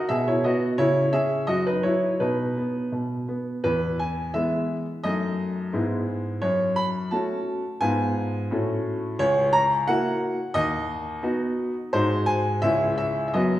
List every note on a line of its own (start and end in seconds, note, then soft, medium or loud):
0.09 0.43 B2 medium
0.09 0.26 G#4 medium
0.09 0.27 E5 medium
0.28 0.44 E4 medium
0.28 0.45 C#5 medium
0.44 0.78 B3 medium
0.44 0.77 F#4 medium
0.44 0.65 D#5 medium
0.78 1.12 C#3 medium
0.78 1.11 E4 medium
0.78 1.10 C#5 medium
1.13 1.47 C#4 medium
1.13 1.46 G#4 medium
1.13 1.48 E5 medium
1.47 1.82 F#2 medium
1.47 1.65 F#4 medium
1.47 1.65 D#5 medium
1.67 1.83 D#4 medium
1.67 1.84 B4 medium
1.83 2.19 F#3 soft
1.83 2.18 E4 medium
1.83 2.19 C#5 medium
2.20 2.55 B2 medium
2.20 2.89 D#4 soft
2.20 2.92 B4 medium
2.57 2.92 B3 soft
2.92 3.27 B2 soft
3.28 3.63 B3 soft
3.64 4.32 E2 medium
3.64 3.96 B4 medium
3.99 4.34 G#5 medium
4.34 4.85 E3 soft
4.34 4.85 G#3 soft
4.34 4.85 B3 soft
4.34 4.76 E5 medium
5.04 5.72 F#2 medium
5.04 5.70 A3 soft
5.04 5.70 D#4 soft
5.04 5.87 D#5 medium
5.73 6.40 G#2 medium
5.73 6.38 G#3 soft
5.73 6.38 B3 soft
5.73 6.39 E4 soft
6.42 7.09 F#2 medium
6.42 6.76 C#5 medium
6.76 7.11 B5 medium
7.11 7.61 A3 soft
7.11 7.62 C#4 soft
7.11 7.62 F#4 medium
7.11 7.77 A5 medium
7.81 8.48 G#2 medium
7.81 8.46 B3 soft
7.81 8.46 F4 soft
7.81 8.63 G#5 loud
8.51 9.17 A2 medium
8.51 9.15 A3 soft
8.51 9.15 C#4 soft
8.51 9.16 F#4 soft
9.19 9.85 C#2 medium
9.19 9.53 C#5 loud
9.53 9.73 A#5 loud
9.87 10.37 A#3 medium
9.87 10.37 E4 medium
9.87 10.37 F#4 medium
9.87 10.51 F#5 loud
10.54 11.21 D#2 medium
10.54 11.92 D#5 loud
11.23 11.72 B3 medium
11.23 11.73 D#4 medium
11.23 11.73 F#4 medium
11.93 12.61 G#2 medium
11.93 12.59 G#3 medium
11.93 12.59 D#4 medium
11.93 12.60 F#4 medium
11.93 12.27 C5 loud
12.26 12.62 G#5 loud
12.62 13.33 C#2 medium
12.62 13.31 G#3 soft
12.62 13.31 C#4 soft
12.62 13.31 E4 soft
12.62 12.94 E5 medium
12.98 13.26 E5 medium
13.28 13.35 E5 medium
13.34 13.60 F#2 medium
13.34 13.60 F#3 soft
13.34 13.60 B3 soft
13.34 13.60 F#4 soft
13.34 13.60 D#5 medium